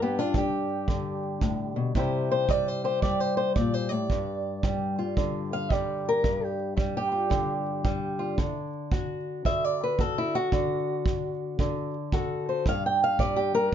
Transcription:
Already playing: steel-string acoustic guitar G2
0.02 steel-string acoustic guitar B3 G4
0.19 steel-string acoustic guitar D4 F4
0.34 steel-string acoustic guitar G3 G4, kick
0.88 steel-string acoustic guitar D3, kick
1.41 steel-string acoustic guitar A2, kick
1.76 steel-string acoustic guitar B2
1.95 steel-string acoustic guitar C3 G3 E4 G4 C5, kick
2.31 steel-string acoustic guitar C5
2.49 steel-string acoustic guitar G3 D5, kick
2.68 steel-string acoustic guitar C5
2.84 steel-string acoustic guitar G4 C5
3.02 steel-string acoustic guitar G3 D5, kick
3.20 steel-string acoustic guitar C5
3.37 steel-string acoustic guitar C5
3.56 steel-string acoustic guitar A#2 D5, kick
3.74 steel-string acoustic guitar C5
3.89 steel-string acoustic guitar A2 D5
4.10 steel-string acoustic guitar G2, kick
4.63 steel-string acoustic guitar G3, kick
4.99 steel-string acoustic guitar F4
5.17 steel-string acoustic guitar D3, kick
5.53 steel-string acoustic guitar F5
5.70 steel-string acoustic guitar G3 D5, kick
6.09 steel-string acoustic guitar A#4
6.24 steel-string acoustic guitar G2, kick
6.44 steel-string acoustic guitar G4
6.77 steel-string acoustic guitar G3, kick
6.97 steel-string acoustic guitar G4
7.12 steel-string acoustic guitar F4
7.30 steel-string acoustic guitar D3, kick
7.85 steel-string acoustic guitar G3, kick
8.19 steel-string acoustic guitar F4
8.38 steel-string acoustic guitar D3, kick
8.92 steel-string acoustic guitar F#4, kick
9.45 steel-string acoustic guitar D3 E5, kick
9.65 steel-string acoustic guitar D5
9.84 steel-string acoustic guitar B4
9.99 steel-string acoustic guitar F#4 A4, kick
10.18 steel-string acoustic guitar E4
10.35 steel-string acoustic guitar F#4
10.52 steel-string acoustic guitar D3, kick
11.06 kick
11.59 steel-string acoustic guitar D3, kick
12.12 steel-string acoustic guitar F#4 A4, kick
12.49 steel-string acoustic guitar C5
12.66 steel-string acoustic guitar G2 F5, kick
12.86 steel-string acoustic guitar G5
13.04 steel-string acoustic guitar F5
13.19 steel-string acoustic guitar G3 D5, kick
13.36 steel-string acoustic guitar G4
13.55 steel-string acoustic guitar G3 A#4

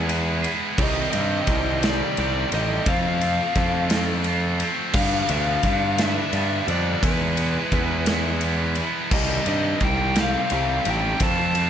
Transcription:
Already playing: picked electric bass E2
0.07 distorted electric guitar G#3 B3 E4 G#4, ride
0.42 distorted electric guitar B3 E4 G#4, ride
0.77 picked electric bass C2, distorted electric guitar C3 D#3 G3 C4 G4, lead electric guitar D#5, kick, crash
1.11 picked electric bass G2, distorted electric guitar C4 G4, lead electric guitar D#5, ride
1.16 distorted electric guitar G3
1.47 picked electric bass C2, distorted electric guitar D#3 G3 C4 G4, kick, ride
1.83 distorted electric guitar G3 C4 G4, lead electric guitar D5, snare, ride
2.17 picked electric bass C2, distorted electric guitar D#3 G3 C4 G4, ride
2.52 picked electric bass A1, distorted electric guitar G3 C4 G4, lead electric guitar D#5, ride
2.86 picked electric bass F2, distorted electric guitar F3 A3 C4 F4, lead electric guitar F5, kick, ride
3.21 distorted electric guitar A3 C4 F4, ride
3.55 picked electric bass F2, distorted electric guitar F3 A3 C4 F4, kick, ride
3.89 distorted electric guitar A3 C4 F4, snare, ride
4.24 distorted electric guitar F3 A3 C4 F4, ride
4.60 distorted electric guitar A3 C4 F4, ride
4.93 picked electric bass G2, distorted electric guitar G2 D3 G3 B3, lead electric guitar F5, kick, crash
4.98 distorted electric guitar D4
5.29 picked electric bass D2, distorted electric guitar G3 B3 D4, lead electric guitar F5, ride
5.63 picked electric bass G2, distorted electric guitar D3 G3 B3 D4, kick, ride
5.98 distorted electric guitar G3 B3 D4, lead electric guitar E5, snare, ride
6.33 picked electric bass G2, distorted electric guitar D3 G3 B3 D4, ride
6.68 picked electric bass F2, distorted electric guitar G3 B3 D4, lead electric guitar D5, ride
7.02 picked electric bass E2, distorted electric guitar E3 G#3 B3 E4, lead electric guitar B4, kick, ride
7.37 distorted electric guitar G#3 B3 E4, ride
7.72 picked electric bass E2, distorted electric guitar E3 G#3 B3 E4, kick, ride
8.06 distorted electric guitar G#3 B3 E4, snare, ride
8.41 distorted electric guitar E3 G#3 B3, ride
8.45 distorted electric guitar E4
8.75 distorted electric guitar B3 E4, ride
8.80 distorted electric guitar G#3
9.11 picked electric bass C2, distorted electric guitar C3 D#3 G3 C4 G4, lead electric guitar D#5, kick, crash
9.46 picked electric bass G2, distorted electric guitar G3 C4 G4, lead electric guitar D#5, ride
9.80 picked electric bass C2, distorted electric guitar D#3 G3 C4 G4, kick, ride
9.85 lead electric guitar G5
10.15 distorted electric guitar G3 C4 G4, snare, ride
10.21 lead electric guitar F5
10.50 picked electric bass C2, distorted electric guitar D#3 G3 C4 G4, ride
10.85 picked electric bass A1, distorted electric guitar C4 G4, ride
10.89 distorted electric guitar G3, lead electric guitar G5
11.20 picked electric bass F2, distorted electric guitar F3 A3 C4 F4, lead electric guitar A5, kick, ride
11.54 distorted electric guitar A3 C4 F4, ride

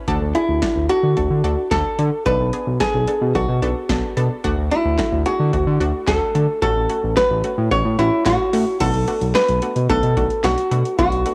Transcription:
0.08 analog synth bass D2, synth pluck D4 F#4 A4, kick, closed hi-hat
0.21 analog synth bass D2
0.35 synth pluck D4 F#4 G#4, hollow-body jazz guitar E4, closed hi-hat
0.49 analog synth bass D2
0.62 synth pluck D4 F#4 A4, kick, snare, closed hi-hat
0.76 analog synth bass D2
0.89 synth pluck D4 F#4 A4, hollow-body jazz guitar F#4, closed hi-hat
1.03 analog synth bass D3
1.17 analog synth bass D2, synth pluck D4 F#4 A4, kick, closed hi-hat
1.30 analog synth bass D3
1.44 analog synth bass D2, synth pluck D4 F#4 A4, closed hi-hat
1.71 analog synth bass D2, synth pluck D4 F#4 A4, hollow-body jazz guitar A4, kick, snare, closed hi-hat
1.99 analog synth bass D3, synth pluck D4 F#4 A4, closed hi-hat
2.26 analog synth bass B1, synth pluck B3 D4 A4, hollow-body jazz guitar B4, kick, closed hi-hat
2.40 analog synth bass B1
2.53 synth pluck B3 D4 G#4, closed hi-hat
2.67 analog synth bass B1
2.80 synth pluck B3 D4 A4, hollow-body jazz guitar G#4, kick, snare, closed hi-hat
2.94 analog synth bass B1
3.07 synth pluck B3 D4 A4, closed hi-hat
3.21 analog synth bass B2
3.35 analog synth bass B1, synth pluck B3 D4 A4, hollow-body jazz guitar F#4, kick, closed hi-hat
3.49 analog synth bass B2
3.62 analog synth bass B1, synth pluck B3 D4 A4, closed hi-hat
3.89 analog synth bass B1, synth pluck B3 D4 A4, kick, snare, closed hi-hat
4.17 analog synth bass B2, synth pluck B3 D4 A4, closed hi-hat
4.44 analog synth bass D2, synth pluck A3 D4 F#4, kick, closed hi-hat
4.58 analog synth bass D2
4.71 synth pluck A3 D4 F#4, hollow-body jazz guitar E4, closed hi-hat
4.85 analog synth bass D2
4.98 synth pluck A3 D4 F#4, kick, snare, clap, closed hi-hat
5.12 analog synth bass D2
5.26 synth pluck A3 D4 G#4, hollow-body jazz guitar F#4, closed hi-hat
5.40 analog synth bass D3
5.53 analog synth bass D2, synth pluck A3 D4 F#4, kick, closed hi-hat
5.67 analog synth bass D3
5.80 analog synth bass D2, synth pluck A3 D4 F#4, closed hi-hat
6.07 analog synth bass D2, synth pluck A3 D4 F#4, hollow-body jazz guitar A4, kick, snare, clap, closed hi-hat
6.35 analog synth bass D3, synth pluck A3 D4 A4, closed hi-hat
6.62 analog synth bass A1, synth pluck A3 C#4 F#4, hollow-body jazz guitar A4, kick, closed hi-hat
6.76 analog synth bass A1
6.89 synth pluck A3 C#4 F#4, closed hi-hat
7.03 analog synth bass A1
7.17 synth pluck A3 C#4 F#4, hollow-body jazz guitar B4, kick, snare, clap, closed hi-hat
7.31 analog synth bass A1
7.44 synth pluck A3 C#4 F#4, closed hi-hat
7.58 analog synth bass A2
7.71 analog synth bass A1, synth pluck A3 C#4 F#4, hollow-body jazz guitar C#5, kick, closed hi-hat
7.85 analog synth bass A2
7.99 analog synth bass A1, synth pluck A3 C#4 F#4, hollow-body jazz guitar E4, closed hi-hat
8.26 analog synth bass A1, synth pluck A3 C#4 F#4, hollow-body jazz guitar F#4, kick, snare, clap, closed hi-hat
8.53 analog synth bass A2, synth pluck A3 C#4 F#4, open hi-hat
8.80 analog synth bass B1, synth pluck A3 B3 D4 F#4, hollow-body jazz guitar A4, kick, closed hi-hat, crash
8.94 analog synth bass B1, closed hi-hat
9.08 synth pluck A3 B3 D4 F#4, closed hi-hat
9.21 analog synth bass B1, closed hi-hat
9.35 synth pluck A3 B3 D4 F#4, hollow-body jazz guitar B4, snare, clap, closed hi-hat
9.48 analog synth bass B1, closed hi-hat
9.62 synth pluck A3 B3 D4 F#4, closed hi-hat
9.76 analog synth bass B2, closed hi-hat
9.90 analog synth bass B1, synth pluck A3 B3 D4 F#4, hollow-body jazz guitar A4, kick, closed hi-hat
10.03 analog synth bass B2, closed hi-hat
10.17 analog synth bass B1, synth pluck A3 B3 D4 F#4, kick, closed hi-hat
10.30 closed hi-hat
10.44 analog synth bass B1, synth pluck A3 B3 D4 F#4, hollow-body jazz guitar F#4, snare, clap, closed hi-hat
10.58 closed hi-hat
10.71 analog synth bass B2, synth pluck A3 B3 D4 F#4, closed hi-hat
10.85 closed hi-hat
10.99 analog synth bass B1, synth pluck A3 B3 D4 F#4, hollow-body jazz guitar F#4, kick, closed hi-hat
11.12 analog synth bass B1, closed hi-hat
11.26 synth pluck A3 B3 D4 F#4, closed hi-hat

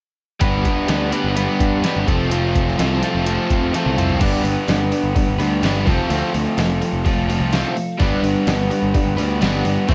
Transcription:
0.40 picked electric bass G1, twelve-string acoustic guitar G2 D3 G3 B3 D4 G4, overdriven electric guitar B4, kick, closed hi-hat
0.63 twelve-string acoustic guitar G3 B3 D4 G4, kick, closed hi-hat
0.88 picked electric bass D2, twelve-string acoustic guitar G3 B3 D4 G4, overdriven electric guitar B4, snare, closed hi-hat
1.12 twelve-string acoustic guitar G3 B3 D4 G4, overdriven electric guitar B4, closed hi-hat
1.24 picked electric bass G1
1.35 twelve-string acoustic guitar G2 D3 G3 B3 D4 G4, overdriven electric guitar B4, closed hi-hat
1.60 picked electric bass G2, kick, closed hi-hat
1.83 twelve-string acoustic guitar G3 B3 D4 G4, overdriven electric guitar B4, snare, closed hi-hat
1.96 picked electric bass G1
2.06 picked electric bass F1, overdriven electric guitar F3 A3, twelve-string acoustic guitar C4 F4 A4, kick, closed hi-hat
2.30 twelve-string acoustic guitar F3 C4 F4 A4, overdriven electric guitar A3, closed hi-hat
2.54 twelve-string acoustic guitar C4 F4 A4, kick, closed hi-hat
2.68 snare
2.77 picked electric bass C2, twelve-string acoustic guitar F3 C4 F4 A4, overdriven electric guitar A3, snare, closed hi-hat
3.02 overdriven electric guitar F3 A3 C4 F4 A4, closed hi-hat
3.14 picked electric bass F1
3.25 twelve-string acoustic guitar F3 C4 F4 A4, overdriven electric guitar A3, closed hi-hat
3.50 picked electric bass F2, kick, closed hi-hat
3.72 twelve-string acoustic guitar F3 C4 F4 A4, overdriven electric guitar A3, snare, closed hi-hat
3.86 picked electric bass C2, high tom
3.97 overdriven electric guitar F3 A3 C4 F4 A4, closed hi-hat, mid tom
4.10 floor tom
4.20 picked electric bass G1, twelve-string acoustic guitar G2 D3 G3 B3 D4 B4, kick, open hi-hat, crash
4.42 picked electric bass G1, twelve-string acoustic guitar G3 B3 D4 B4, open hi-hat
4.66 picked electric bass G1, twelve-string acoustic guitar G2 D3 G3 B3 D4 B4, snare, open hi-hat
4.89 twelve-string acoustic guitar G3 B3 D4 B4, open hi-hat
5.03 picked electric bass G1
5.14 twelve-string acoustic guitar G3 B3 D4 B4, kick, open hi-hat
5.28 picked electric bass G1
5.38 picked electric bass D2, twelve-string acoustic guitar G3 B3 D4 B4, open hi-hat
5.61 picked electric bass G1, twelve-string acoustic guitar G2 D3 G3 B3 D4 B4, snare, open hi-hat
5.85 picked electric bass F1, twelve-string acoustic guitar F3 C4 F4 A4, overdriven electric guitar A3, kick, open hi-hat
6.09 picked electric bass D2, overdriven electric guitar F3 A3 C4, open hi-hat
6.33 picked electric bass D2, overdriven electric guitar F3 A3, twelve-string acoustic guitar C4 F4 A4, open hi-hat
6.57 picked electric bass F1, twelve-string acoustic guitar F3 C4 F4 A4, overdriven electric guitar A3, snare, open hi-hat
6.81 overdriven electric guitar F3 A3, twelve-string acoustic guitar C4 F4 A4, open hi-hat
6.93 picked electric bass F1
7.04 twelve-string acoustic guitar F3 C4 F4 A4, overdriven electric guitar A3, kick, open hi-hat
7.16 picked electric bass F1
7.27 overdriven electric guitar F3 A3, twelve-string acoustic guitar C4 F4 A4, open hi-hat
7.40 picked electric bass C2
7.51 twelve-string acoustic guitar F3 C4 F4 A4, overdriven electric guitar A3, snare, open hi-hat
7.76 overdriven electric guitar F3 A3, open hi-hat
7.99 picked electric bass G1, twelve-string acoustic guitar G2 D3 G3 B3 D4 B4, kick, open hi-hat
8.22 picked electric bass G1, twelve-string acoustic guitar G3 B3 D4 B4, open hi-hat
8.45 picked electric bass G1, twelve-string acoustic guitar G2 D3 G3 B3 D4 B4, snare, open hi-hat
8.68 twelve-string acoustic guitar G3 B3 D4 B4, open hi-hat
8.82 picked electric bass G1
8.92 twelve-string acoustic guitar G3 B3 D4 B4, kick, open hi-hat
9.05 picked electric bass G1
9.16 picked electric bass D2, twelve-string acoustic guitar G3 B3 D4 B4, open hi-hat
9.41 picked electric bass G1, twelve-string acoustic guitar G2 D3 G3 B3 D4 B4, snare, open hi-hat
9.64 picked electric bass G1, overdriven electric guitar G3 D4, snare, open hi-hat
9.87 picked electric bass A1, twelve-string acoustic guitar A2 E3 A3 C4 E4 A4, overdriven electric guitar C5, kick, open hi-hat

